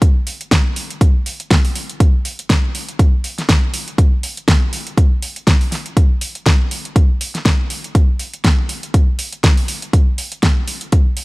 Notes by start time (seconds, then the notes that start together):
0.02 kick, closed hi-hat
0.27 open hi-hat
0.41 closed hi-hat
0.51 kick, snare, closed hi-hat
0.76 open hi-hat
0.90 closed hi-hat
1.01 kick, closed hi-hat
1.26 open hi-hat
1.40 closed hi-hat
1.51 kick, snare, closed hi-hat
1.65 open hi-hat
1.75 open hi-hat
1.89 closed hi-hat
2.00 kick, closed hi-hat
2.25 open hi-hat
2.39 closed hi-hat
2.50 kick, snare, closed hi-hat
2.75 open hi-hat
2.89 closed hi-hat
2.99 kick, closed hi-hat
3.24 open hi-hat
3.38 snare, closed hi-hat
3.49 kick, snare, closed hi-hat
3.74 open hi-hat
3.88 closed hi-hat
3.98 kick, closed hi-hat
4.23 open hi-hat
4.37 closed hi-hat
4.48 kick, snare, closed hi-hat
4.73 open hi-hat
4.87 closed hi-hat
4.98 kick, closed hi-hat
5.22 open hi-hat
5.36 closed hi-hat
5.47 kick, snare, closed hi-hat
5.61 open hi-hat
5.72 snare, open hi-hat
5.86 closed hi-hat
5.97 kick, closed hi-hat
6.21 open hi-hat
6.35 closed hi-hat
6.46 kick, snare, closed hi-hat
6.71 open hi-hat
6.85 closed hi-hat
6.96 kick, closed hi-hat
7.21 open hi-hat
7.35 snare, closed hi-hat
7.45 kick, snare, closed hi-hat
7.70 open hi-hat
7.84 closed hi-hat
7.95 kick, closed hi-hat
8.19 open hi-hat
8.34 closed hi-hat
8.44 kick, snare, closed hi-hat
8.69 open hi-hat
8.83 closed hi-hat
8.94 kick, closed hi-hat
9.19 open hi-hat
9.33 closed hi-hat
9.44 kick, snare, closed hi-hat
9.57 open hi-hat
9.68 open hi-hat
9.82 closed hi-hat
9.93 kick, closed hi-hat
10.18 open hi-hat
10.32 closed hi-hat
10.43 kick, snare, closed hi-hat
10.68 open hi-hat
10.81 closed hi-hat
10.92 kick, closed hi-hat
11.17 open hi-hat